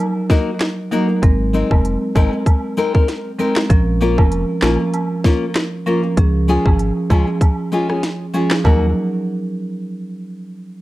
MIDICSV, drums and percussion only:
0, 0, Header, 1, 2, 480
1, 0, Start_track
1, 0, Tempo, 618557
1, 952, Time_signature, 4, 2, 24, 8
1, 8393, End_track
2, 0, Start_track
2, 0, Title_t, "Drums"
2, 231, Note_on_c, 9, 36, 95
2, 231, Note_on_c, 9, 38, 72
2, 233, Note_on_c, 9, 69, 82
2, 308, Note_off_c, 9, 36, 0
2, 308, Note_off_c, 9, 38, 0
2, 311, Note_off_c, 9, 69, 0
2, 466, Note_on_c, 9, 39, 87
2, 471, Note_on_c, 9, 38, 107
2, 471, Note_on_c, 9, 42, 67
2, 544, Note_off_c, 9, 39, 0
2, 548, Note_off_c, 9, 38, 0
2, 549, Note_off_c, 9, 42, 0
2, 714, Note_on_c, 9, 69, 79
2, 792, Note_off_c, 9, 69, 0
2, 953, Note_on_c, 9, 36, 124
2, 953, Note_on_c, 9, 42, 86
2, 1031, Note_off_c, 9, 36, 0
2, 1031, Note_off_c, 9, 42, 0
2, 1194, Note_on_c, 9, 69, 77
2, 1272, Note_off_c, 9, 69, 0
2, 1327, Note_on_c, 9, 36, 94
2, 1328, Note_on_c, 9, 76, 66
2, 1404, Note_off_c, 9, 36, 0
2, 1406, Note_off_c, 9, 76, 0
2, 1435, Note_on_c, 9, 42, 69
2, 1512, Note_off_c, 9, 42, 0
2, 1673, Note_on_c, 9, 36, 100
2, 1675, Note_on_c, 9, 69, 68
2, 1675, Note_on_c, 9, 76, 69
2, 1751, Note_off_c, 9, 36, 0
2, 1752, Note_off_c, 9, 69, 0
2, 1752, Note_off_c, 9, 76, 0
2, 1911, Note_on_c, 9, 36, 97
2, 1913, Note_on_c, 9, 76, 70
2, 1914, Note_on_c, 9, 42, 90
2, 1988, Note_off_c, 9, 36, 0
2, 1991, Note_off_c, 9, 42, 0
2, 1991, Note_off_c, 9, 76, 0
2, 2151, Note_on_c, 9, 69, 81
2, 2229, Note_off_c, 9, 69, 0
2, 2287, Note_on_c, 9, 36, 106
2, 2364, Note_off_c, 9, 36, 0
2, 2392, Note_on_c, 9, 38, 61
2, 2393, Note_on_c, 9, 42, 70
2, 2470, Note_off_c, 9, 38, 0
2, 2470, Note_off_c, 9, 42, 0
2, 2633, Note_on_c, 9, 69, 77
2, 2710, Note_off_c, 9, 69, 0
2, 2761, Note_on_c, 9, 39, 90
2, 2766, Note_on_c, 9, 38, 113
2, 2838, Note_off_c, 9, 39, 0
2, 2843, Note_off_c, 9, 38, 0
2, 2871, Note_on_c, 9, 42, 87
2, 2872, Note_on_c, 9, 36, 125
2, 2949, Note_off_c, 9, 36, 0
2, 2949, Note_off_c, 9, 42, 0
2, 3113, Note_on_c, 9, 69, 72
2, 3191, Note_off_c, 9, 69, 0
2, 3245, Note_on_c, 9, 36, 98
2, 3248, Note_on_c, 9, 76, 72
2, 3322, Note_off_c, 9, 36, 0
2, 3326, Note_off_c, 9, 76, 0
2, 3350, Note_on_c, 9, 42, 70
2, 3428, Note_off_c, 9, 42, 0
2, 3583, Note_on_c, 9, 39, 92
2, 3588, Note_on_c, 9, 38, 116
2, 3594, Note_on_c, 9, 69, 67
2, 3594, Note_on_c, 9, 76, 66
2, 3661, Note_off_c, 9, 39, 0
2, 3666, Note_off_c, 9, 38, 0
2, 3672, Note_off_c, 9, 69, 0
2, 3672, Note_off_c, 9, 76, 0
2, 3830, Note_on_c, 9, 42, 91
2, 3832, Note_on_c, 9, 76, 70
2, 3908, Note_off_c, 9, 42, 0
2, 3910, Note_off_c, 9, 76, 0
2, 4069, Note_on_c, 9, 36, 92
2, 4069, Note_on_c, 9, 38, 76
2, 4072, Note_on_c, 9, 69, 83
2, 4147, Note_off_c, 9, 36, 0
2, 4147, Note_off_c, 9, 38, 0
2, 4150, Note_off_c, 9, 69, 0
2, 4306, Note_on_c, 9, 39, 89
2, 4311, Note_on_c, 9, 38, 110
2, 4312, Note_on_c, 9, 42, 75
2, 4384, Note_off_c, 9, 39, 0
2, 4389, Note_off_c, 9, 38, 0
2, 4390, Note_off_c, 9, 42, 0
2, 4554, Note_on_c, 9, 69, 77
2, 4631, Note_off_c, 9, 69, 0
2, 4790, Note_on_c, 9, 42, 85
2, 4791, Note_on_c, 9, 36, 121
2, 4868, Note_off_c, 9, 42, 0
2, 4869, Note_off_c, 9, 36, 0
2, 5033, Note_on_c, 9, 69, 77
2, 5111, Note_off_c, 9, 69, 0
2, 5165, Note_on_c, 9, 36, 95
2, 5168, Note_on_c, 9, 76, 68
2, 5243, Note_off_c, 9, 36, 0
2, 5245, Note_off_c, 9, 76, 0
2, 5271, Note_on_c, 9, 42, 67
2, 5349, Note_off_c, 9, 42, 0
2, 5512, Note_on_c, 9, 36, 100
2, 5514, Note_on_c, 9, 69, 67
2, 5514, Note_on_c, 9, 76, 69
2, 5589, Note_off_c, 9, 36, 0
2, 5592, Note_off_c, 9, 69, 0
2, 5592, Note_off_c, 9, 76, 0
2, 5750, Note_on_c, 9, 36, 99
2, 5753, Note_on_c, 9, 42, 95
2, 5755, Note_on_c, 9, 76, 68
2, 5828, Note_off_c, 9, 36, 0
2, 5830, Note_off_c, 9, 42, 0
2, 5832, Note_off_c, 9, 76, 0
2, 5992, Note_on_c, 9, 69, 78
2, 6070, Note_off_c, 9, 69, 0
2, 6127, Note_on_c, 9, 37, 90
2, 6205, Note_off_c, 9, 37, 0
2, 6233, Note_on_c, 9, 38, 66
2, 6233, Note_on_c, 9, 42, 71
2, 6310, Note_off_c, 9, 38, 0
2, 6311, Note_off_c, 9, 42, 0
2, 6471, Note_on_c, 9, 69, 79
2, 6549, Note_off_c, 9, 69, 0
2, 6600, Note_on_c, 9, 39, 95
2, 6604, Note_on_c, 9, 38, 112
2, 6677, Note_off_c, 9, 39, 0
2, 6682, Note_off_c, 9, 38, 0
2, 6712, Note_on_c, 9, 36, 104
2, 6712, Note_on_c, 9, 76, 91
2, 6789, Note_off_c, 9, 36, 0
2, 6789, Note_off_c, 9, 76, 0
2, 8393, End_track
0, 0, End_of_file